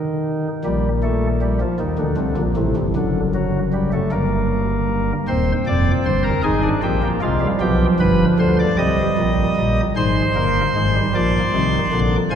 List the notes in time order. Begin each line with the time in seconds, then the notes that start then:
Already playing: D#3
0.64 A#1 A#2 G3
1.03 A3
1.42 G3
1.61 F3
1.80 D#2 D#3
1.99 D2 D3
2.17 C2 C3 D3
2.37 A#1 A#2
2.57 A1 A2 C3
2.77 G1 G2
2.96 F#1 F#2 D3
3.35 F#3
3.73 G3
3.93 A3
4.12 G1 G2 A#3
5.28 D#1 D#2 C4 C5
5.67 F1 F2 D5
6.06 G1 G2 C5
6.24 A#4
6.43 G#1 G#2 D#4 G#4
6.63 D4
6.83 A#1 A#2 C4 G4
7.03 A#3
7.22 C2 C3 G#3 F4
7.41 G3
7.61 B1 B2 F3 G4
8.00 G1 G2 B4
8.39 D2 D3 C5
8.59 D5
8.78 C2 C3 G3 D#5
9.18 A#1 A#2
9.57 A#1 A#2
9.96 G#1 G#2 G#3 C5 C6
10.36 G1 G2 A#3
10.76 G#1 G#2 G#3
10.95 G3
11.15 A#1 A#2 F3 D5
11.53 C2 C3 D#3
11.92 A#1 A#2 D3
12.31 G#1 G#2 F3 C5 G#5